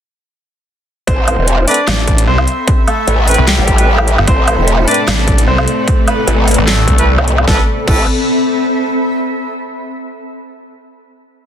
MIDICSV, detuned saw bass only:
0, 0, Header, 1, 2, 480
1, 0, Start_track
1, 0, Key_signature, 0, "minor"
1, 0, Tempo, 400000
1, 1290, Time_signature, 4, 2, 24, 8
1, 13752, End_track
2, 0, Start_track
2, 0, Title_t, "Detuned saw bass"
2, 0, Program_c, 0, 39
2, 2250, Note_on_c, 0, 33, 98
2, 2712, Note_off_c, 0, 33, 0
2, 2730, Note_on_c, 0, 36, 101
2, 2952, Note_off_c, 0, 36, 0
2, 4059, Note_on_c, 0, 36, 99
2, 4279, Note_off_c, 0, 36, 0
2, 5020, Note_on_c, 0, 31, 97
2, 5113, Note_off_c, 0, 31, 0
2, 6090, Note_on_c, 0, 33, 97
2, 6553, Note_off_c, 0, 33, 0
2, 6570, Note_on_c, 0, 36, 102
2, 6793, Note_off_c, 0, 36, 0
2, 7900, Note_on_c, 0, 33, 97
2, 8233, Note_off_c, 0, 33, 0
2, 8251, Note_on_c, 0, 36, 103
2, 8599, Note_off_c, 0, 36, 0
2, 13752, End_track
0, 0, End_of_file